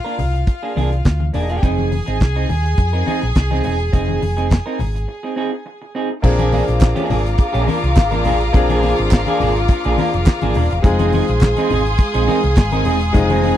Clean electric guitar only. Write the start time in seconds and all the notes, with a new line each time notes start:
0.04 A#3 D4 A#4
0.19 muted clean electric guitar stroke
0.34 muted clean electric guitar stroke
0.47 muted clean electric guitar stroke
0.63 A#3 D4 G#4
0.76 A#3 D4 G#4
0.91 muted clean electric guitar stroke
1.05 muted clean electric guitar stroke
1.20 muted clean electric guitar stroke
1.34 A#3 D4 G#4
1.49 A#3 D4 G#4
1.62 C4 D#4 G#4
1.91 muted clean electric guitar stroke
2.06 C4 D#4 G#4
2.21 muted clean electric guitar stroke
2.36 C4 D#4 G#4
2.49 muted clean electric guitar stroke
2.65 muted clean electric guitar stroke
2.78 muted clean electric guitar stroke
2.93 C4 D#4 A#4
3.06 C4 D#4 G#4
3.22 muted clean electric guitar stroke
3.35 muted clean electric guitar stroke
3.51 C4 D#4 G#4
3.64 C4 D#4 G#4
3.79 muted clean electric guitar stroke
3.93 C4 D#4 G#4
4.21 muted clean electric guitar stroke
4.37 C4 D#4 G#4
4.50 muted clean electric guitar stroke
4.66 C4 D#4 A#4
4.80 muted clean electric guitar stroke
4.95 muted clean electric guitar stroke
5.08 muted clean electric guitar stroke
5.23 C4 D#4 G#4
5.36 C4 D#4 G#4
5.52 muted clean electric guitar stroke
5.66 muted clean electric guitar stroke
5.82 muted clean electric guitar stroke
5.95 C4 D#4 G#4
6.10 muted clean electric guitar stroke
6.24 muted clean electric guitar stroke
6.39 A#3 D4 G#4
6.53 A#3 D4 G#4
6.68 muted clean electric guitar stroke
6.81 muted clean electric guitar stroke
6.95 A#3 D4 G#4
7.10 A#3 D4 G#4
7.26 muted clean electric guitar stroke
7.39 muted clean electric guitar stroke
7.53 A#3 D4 G#4
7.67 A#3 D4 A#4
7.83 muted clean electric guitar stroke
7.96 muted clean electric guitar stroke
8.11 A#3 D4 A#4
8.25 A#3 D4 G#4
8.40 muted clean electric guitar stroke
8.55 muted clean electric guitar stroke
8.70 A#3 D4 G#4
8.83 A#3 D4 G#4
8.99 muted clean electric guitar stroke
9.12 muted clean electric guitar stroke
9.28 A#3 D4 G#4
9.42 A#3 D4 G#4
9.57 muted clean electric guitar stroke
9.70 muted clean electric guitar stroke
9.85 A#3 D4 G#4
9.99 A#3 D4 A#4
10.14 muted clean electric guitar stroke
10.27 muted clean electric guitar stroke
10.42 A#3 D4 G#4
10.56 A#3 D4 A#4
10.71 muted clean electric guitar stroke
10.85 muted clean electric guitar stroke
10.99 C4 D#4 G#4
11.13 C4 D#4 G#4
11.29 muted clean electric guitar stroke
11.42 muted clean electric guitar stroke
11.57 C4 D#4 G#4
11.70 C4 D#4 G#4
11.87 muted clean electric guitar stroke
11.99 muted clean electric guitar stroke
12.14 C4 D#4 G#4
12.27 C4 D#4 A#4
12.43 muted clean electric guitar stroke
12.58 muted clean electric guitar stroke
12.72 C4 D#4 A#4
12.86 C4 D#4 G#4
13.01 muted clean electric guitar stroke
13.15 muted clean electric guitar stroke
13.30 C4 D#4 G#4
13.44 C4 D#4 G#4